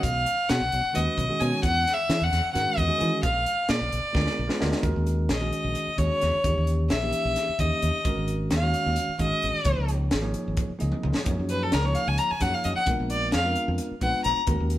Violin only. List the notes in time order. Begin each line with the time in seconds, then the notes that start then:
0.03 F5
0.49 F#5
0.95 D#5
1.40 G#5
1.64 F#5
1.93 E5
2.23 F#5
2.54 F#5
2.78 D#5
3.24 F5
3.70 D5
5.32 D#5
5.98 C#5
6.90 E5
7.60 D#5
8.53 F5
9.21 D#5
11.50 B4
11.63 A4
11.73 A#4
11.85 C#5
11.95 F5
12.08 G#5
12.18 A#5
12.30 G#5
12.41 F#5
12.54 F5
12.65 D#5
12.75 F#5
13.11 D5
13.34 F5
14.02 F#5
14.24 A#5